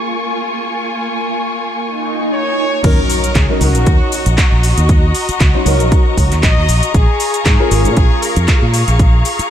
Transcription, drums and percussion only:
2.84 kick loud
2.84 closed hi-hat medium
2.84 crash loud
2.84 shaker soft
3.10 open hi-hat loud
3.10 shaker medium
3.24 closed hi-hat medium
3.24 shaker soft
3.35 kick loud
3.35 clap loud
3.35 closed hi-hat medium
3.35 shaker soft
3.61 open hi-hat loud
3.61 shaker medium
3.75 closed hi-hat medium
3.75 shaker soft
3.87 kick loud
3.87 closed hi-hat medium
3.87 shaker soft
4.12 open hi-hat loud
4.12 shaker medium
4.26 closed hi-hat medium
4.26 shaker soft
4.38 kick loud
4.38 clap loud
4.38 closed hi-hat medium
4.38 shaker soft
4.63 open hi-hat loud
4.63 shaker medium
4.78 closed hi-hat medium
4.78 shaker soft
4.89 kick loud
4.89 closed hi-hat medium
4.89 shaker soft
5.15 open hi-hat loud
5.15 shaker medium
5.29 closed hi-hat medium
5.29 shaker soft
5.40 kick loud
5.40 clap loud
5.40 closed hi-hat medium
5.40 shaker soft
5.66 open hi-hat loud
5.66 shaker medium
5.80 closed hi-hat medium
5.80 shaker soft
5.92 kick loud
5.92 closed hi-hat medium
5.92 shaker soft
6.17 kick medium
6.17 open hi-hat loud
6.17 shaker medium
6.32 clap soft
6.32 closed hi-hat medium
6.32 shaker soft
6.43 kick loud
6.43 clap loud
6.43 closed hi-hat medium
6.43 shaker soft
6.69 open hi-hat loud
6.69 shaker medium
6.83 closed hi-hat medium
6.83 shaker soft
6.94 kick loud
6.94 closed hi-hat medium
6.94 shaker soft
7.20 open hi-hat loud
7.20 shaker medium
7.34 closed hi-hat medium
7.34 shaker soft
7.46 kick loud
7.46 clap loud
7.46 closed hi-hat medium
7.46 shaker soft
7.71 open hi-hat loud
7.71 shaker medium
7.85 closed hi-hat medium
7.85 shaker soft
7.97 kick loud
7.97 closed hi-hat medium
7.97 shaker soft
8.22 open hi-hat loud
8.22 shaker medium
8.36 closed hi-hat medium
8.36 shaker soft
8.48 kick loud
8.48 clap loud
8.48 closed hi-hat medium
8.48 shaker soft
8.74 open hi-hat loud
8.74 shaker medium
8.88 closed hi-hat medium
8.88 shaker soft
8.99 kick loud
8.99 closed hi-hat soft
8.99 shaker soft
9.25 open hi-hat loud
9.25 shaker medium
9.39 closed hi-hat medium
9.39 shaker soft

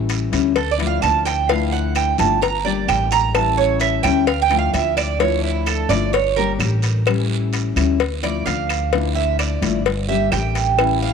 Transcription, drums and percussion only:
0.09 cowbell medium
0.09 short guiro medium
0.33 cowbell medium
0.33 short guiro medium
0.56 cowbell loud
0.56 long guiro medium
0.80 cowbell medium
1.02 cowbell medium
1.02 short guiro medium
1.25 cowbell medium
1.25 short guiro medium
1.49 cowbell loud
1.49 long guiro medium
1.95 cowbell medium
1.95 short guiro medium
1.95 claves medium
2.18 cowbell medium
2.18 short guiro medium
2.42 cowbell loud
2.42 long guiro medium
2.88 cowbell medium
2.88 short guiro medium
2.88 claves medium
3.11 cowbell medium
3.11 short guiro medium
3.34 cowbell loud
3.34 long guiro medium
3.34 claves medium
3.80 cowbell medium
3.80 short guiro medium
4.03 cowbell medium
4.03 short guiro medium
4.03 claves medium
4.27 cowbell loud
4.27 long guiro medium
4.51 cowbell medium
4.74 cowbell medium
4.74 short guiro medium
4.97 cowbell medium
4.97 short guiro medium
4.97 claves medium
5.20 cowbell loud
5.20 long guiro medium
5.67 cowbell medium
5.67 short guiro medium
5.67 claves medium
5.90 cowbell medium
5.90 short guiro medium
6.13 cowbell loud
6.13 long guiro medium
6.60 cowbell medium
6.60 short guiro medium
6.60 claves medium
6.82 cowbell medium
6.82 short guiro medium
7.06 cowbell loud
7.06 long guiro medium
7.06 claves medium
7.53 cowbell medium
7.53 short guiro medium
7.76 cowbell medium
7.76 short guiro medium
7.76 claves medium
8.00 cowbell loud
8.00 long guiro medium
8.24 cowbell medium
8.46 cowbell medium
8.46 short guiro medium
8.69 cowbell medium
8.69 short guiro medium
8.69 claves medium
8.93 cowbell loud
8.93 long guiro medium
9.39 cowbell medium
9.39 short guiro medium
9.39 claves medium
9.62 cowbell medium
9.62 short guiro medium
9.86 cowbell loud
9.86 long guiro medium
10.32 cowbell medium
10.32 short guiro medium
10.32 claves medium
10.55 cowbell medium
10.55 short guiro medium
10.79 cowbell loud
10.79 long guiro medium
10.79 claves medium

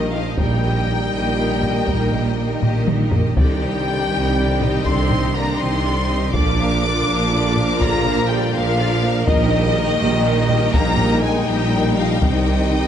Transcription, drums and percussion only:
0.38 taiko medium
1.63 taiko low-mid soft
1.88 taiko medium
2.13 taiko low-mid soft
2.62 taiko low-mid medium
2.88 taiko mid medium
3.12 taiko low medium
3.37 taiko medium
4.61 taiko low-mid soft
4.85 taiko medium
5.10 taiko low-mid soft
6.34 taiko loud
7.57 taiko low-mid medium
7.81 taiko medium
8.06 taiko low-mid medium
9.27 taiko loud
10.50 taiko low-mid medium
10.74 taiko medium
10.98 taiko low-mid medium
12.22 taiko medium

